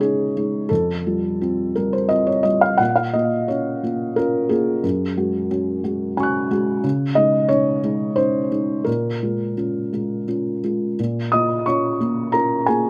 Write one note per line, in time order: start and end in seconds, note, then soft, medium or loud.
0.00 0.65 C#3 soft
0.00 0.37 G#3 soft
0.00 0.02 C#4 soft
0.00 0.32 C#4 soft
0.00 0.03 D#4 soft
0.00 0.33 D#4 soft
0.00 0.69 G#4 medium
0.00 0.72 C#5 medium
0.00 0.72 D#5 medium
0.37 0.67 G#3 soft
0.37 0.67 D#4 soft
0.69 2.76 F2 soft
0.69 1.74 A4 medium
1.07 1.37 G3 soft
1.07 1.37 F4 soft
1.41 1.72 C4 soft
1.41 1.72 F4 soft
1.76 2.07 G3 soft
1.76 2.07 F4 soft
1.76 1.92 A#4 soft
1.93 2.10 C5 medium
2.09 2.41 C4 soft
2.09 2.41 F4 soft
2.09 2.26 D#5 medium
2.27 2.44 C#5 soft
2.43 2.76 G3 soft
2.43 2.76 F4 soft
2.43 2.61 D#5 medium
2.61 2.79 F5 medium
2.78 4.79 A#2 soft
2.78 2.96 F#5 medium
2.96 3.14 F5 medium
3.13 3.46 A#3 soft
3.13 3.46 F4 soft
3.13 3.49 D#5 medium
3.48 3.80 C#4 soft
3.48 3.81 F4 soft
3.48 4.17 C#5 soft
3.84 4.14 A#3 soft
3.84 4.14 F4 soft
4.16 4.47 C#4 soft
4.16 4.48 F4 soft
4.16 4.50 A#4 medium
4.49 4.80 A#3 soft
4.49 4.81 F4 soft
4.49 6.50 G#4 medium
4.83 6.80 F#2 soft
5.17 5.47 G#3 soft
5.17 5.48 F#4 soft
5.51 5.81 C#4 soft
5.51 5.81 F#4 soft
5.84 6.14 G#3 soft
5.84 6.14 F#4 soft
6.17 6.47 C#4 soft
6.17 6.48 F#4 soft
6.17 6.80 G#5 soft
6.17 6.81 C#6 soft
6.23 6.82 F#6 soft
6.51 6.80 G#3 soft
6.51 6.81 F#4 soft
6.84 8.83 C#3 soft
7.15 7.46 G#3 soft
7.15 7.47 D#4 soft
7.15 7.49 D#5 medium
7.49 7.80 C#4 soft
7.49 7.80 D#4 soft
7.49 8.17 C#5 medium
7.83 8.14 G#3 soft
7.83 8.14 D#4 soft
8.16 8.48 C#4 soft
8.16 8.48 D#4 soft
8.16 8.86 C5 medium
8.52 8.83 G#3 soft
8.52 8.83 D#4 soft
8.85 10.94 A#2 soft
8.85 10.27 A#4 medium
9.23 9.54 G#3 soft
9.23 9.54 F4 soft
9.57 9.89 C#4 soft
9.57 9.89 F4 soft
9.93 10.24 G#3 soft
9.93 10.25 F4 soft
10.28 10.60 C#4 soft
10.28 10.60 F4 soft
10.64 10.95 G#3 soft
10.64 10.95 F4 soft
10.99 12.90 A#2 soft
11.32 11.64 A#3 soft
11.32 11.64 F4 soft
11.32 11.65 D#5 medium
11.32 11.66 D#6 medium
11.66 11.98 C#4 soft
11.66 11.98 F4 soft
11.66 12.30 C#5 soft
11.66 12.33 C#6 medium
12.01 12.30 A#3 soft
12.01 12.31 F4 soft
12.32 12.64 C#4 soft
12.32 12.64 F4 soft
12.32 12.64 A#4 soft
12.32 12.66 A#5 medium
12.66 12.90 A#3 soft
12.66 12.90 F4 soft
12.66 12.90 G#4 soft
12.66 12.90 G#5 medium